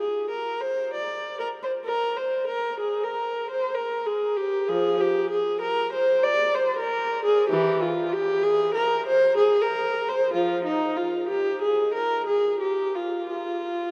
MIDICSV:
0, 0, Header, 1, 2, 480
1, 0, Start_track
1, 0, Tempo, 941915
1, 949, Time_signature, 3, 2, 24, 8
1, 5270, Tempo, 967742
1, 6230, Tempo, 1038062
1, 6985, End_track
2, 0, Start_track
2, 0, Title_t, "Viola"
2, 0, Program_c, 0, 41
2, 0, Note_on_c, 0, 68, 58
2, 150, Note_off_c, 0, 68, 0
2, 155, Note_on_c, 0, 70, 57
2, 311, Note_off_c, 0, 70, 0
2, 311, Note_on_c, 0, 72, 66
2, 473, Note_off_c, 0, 72, 0
2, 477, Note_on_c, 0, 74, 58
2, 709, Note_off_c, 0, 74, 0
2, 710, Note_on_c, 0, 70, 64
2, 751, Note_off_c, 0, 70, 0
2, 831, Note_on_c, 0, 72, 64
2, 872, Note_off_c, 0, 72, 0
2, 944, Note_on_c, 0, 70, 72
2, 1102, Note_off_c, 0, 70, 0
2, 1103, Note_on_c, 0, 72, 62
2, 1261, Note_on_c, 0, 70, 64
2, 1266, Note_off_c, 0, 72, 0
2, 1422, Note_off_c, 0, 70, 0
2, 1426, Note_on_c, 0, 68, 61
2, 1546, Note_off_c, 0, 68, 0
2, 1548, Note_on_c, 0, 70, 63
2, 1787, Note_on_c, 0, 72, 67
2, 1789, Note_off_c, 0, 70, 0
2, 1906, Note_off_c, 0, 72, 0
2, 1909, Note_on_c, 0, 70, 63
2, 2070, Note_off_c, 0, 70, 0
2, 2070, Note_on_c, 0, 68, 64
2, 2226, Note_on_c, 0, 67, 72
2, 2230, Note_off_c, 0, 68, 0
2, 2387, Note_off_c, 0, 67, 0
2, 2387, Note_on_c, 0, 68, 77
2, 2390, Note_on_c, 0, 53, 59
2, 2537, Note_off_c, 0, 53, 0
2, 2547, Note_off_c, 0, 68, 0
2, 2550, Note_on_c, 0, 67, 73
2, 2704, Note_on_c, 0, 68, 72
2, 2708, Note_off_c, 0, 67, 0
2, 2860, Note_on_c, 0, 70, 80
2, 2861, Note_off_c, 0, 68, 0
2, 3018, Note_off_c, 0, 70, 0
2, 3022, Note_on_c, 0, 72, 79
2, 3177, Note_on_c, 0, 74, 89
2, 3178, Note_off_c, 0, 72, 0
2, 3338, Note_off_c, 0, 74, 0
2, 3338, Note_on_c, 0, 72, 78
2, 3458, Note_off_c, 0, 72, 0
2, 3459, Note_on_c, 0, 70, 80
2, 3694, Note_off_c, 0, 70, 0
2, 3694, Note_on_c, 0, 68, 86
2, 3815, Note_off_c, 0, 68, 0
2, 3819, Note_on_c, 0, 67, 88
2, 3821, Note_on_c, 0, 52, 69
2, 3971, Note_off_c, 0, 52, 0
2, 3978, Note_off_c, 0, 67, 0
2, 3983, Note_on_c, 0, 65, 72
2, 4141, Note_on_c, 0, 67, 82
2, 4143, Note_off_c, 0, 65, 0
2, 4295, Note_on_c, 0, 68, 90
2, 4302, Note_off_c, 0, 67, 0
2, 4457, Note_on_c, 0, 70, 84
2, 4458, Note_off_c, 0, 68, 0
2, 4616, Note_off_c, 0, 70, 0
2, 4619, Note_on_c, 0, 72, 92
2, 4775, Note_on_c, 0, 68, 80
2, 4778, Note_off_c, 0, 72, 0
2, 4898, Note_off_c, 0, 68, 0
2, 4902, Note_on_c, 0, 70, 82
2, 5141, Note_on_c, 0, 72, 78
2, 5146, Note_off_c, 0, 70, 0
2, 5266, Note_off_c, 0, 72, 0
2, 5267, Note_on_c, 0, 53, 59
2, 5267, Note_on_c, 0, 65, 77
2, 5415, Note_off_c, 0, 53, 0
2, 5423, Note_off_c, 0, 65, 0
2, 5423, Note_on_c, 0, 63, 75
2, 5580, Note_off_c, 0, 63, 0
2, 5580, Note_on_c, 0, 65, 66
2, 5741, Note_off_c, 0, 65, 0
2, 5742, Note_on_c, 0, 67, 75
2, 5899, Note_off_c, 0, 67, 0
2, 5903, Note_on_c, 0, 68, 68
2, 6061, Note_off_c, 0, 68, 0
2, 6064, Note_on_c, 0, 70, 75
2, 6224, Note_off_c, 0, 70, 0
2, 6226, Note_on_c, 0, 68, 70
2, 6379, Note_off_c, 0, 68, 0
2, 6382, Note_on_c, 0, 67, 64
2, 6538, Note_off_c, 0, 67, 0
2, 6544, Note_on_c, 0, 65, 61
2, 6701, Note_off_c, 0, 65, 0
2, 6707, Note_on_c, 0, 65, 65
2, 6985, Note_off_c, 0, 65, 0
2, 6985, End_track
0, 0, End_of_file